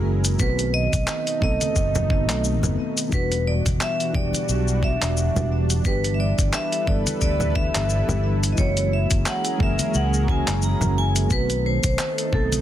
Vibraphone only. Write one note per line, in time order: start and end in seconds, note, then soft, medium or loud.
0.40 0.71 B4 loud
0.74 1.42 D#5 loud
1.44 2.41 D#5 medium
3.14 3.48 B4 loud
3.47 3.63 D5 loud
3.82 4.16 E5 loud
4.15 4.85 D5 loud
4.84 5.48 E5 medium
5.86 6.14 B4 loud
6.14 6.20 E5 medium
6.20 6.51 D5 loud
6.54 6.89 E5 loud
6.87 7.21 D5 loud
7.22 7.53 D5 loud
7.55 8.20 E5 medium
8.53 8.58 D#5 medium
8.59 8.93 C#5 loud
8.93 9.28 E5 medium
9.28 9.59 F#5 loud
9.63 9.96 E5 medium
9.95 10.26 F#5 loud
10.29 10.61 G#5 loud
10.64 10.98 A#5 loud
10.98 11.29 G#5 loud
11.32 11.66 B4 loud
11.66 11.84 C5 medium
11.85 12.30 C5 loud
12.34 12.49 A4 medium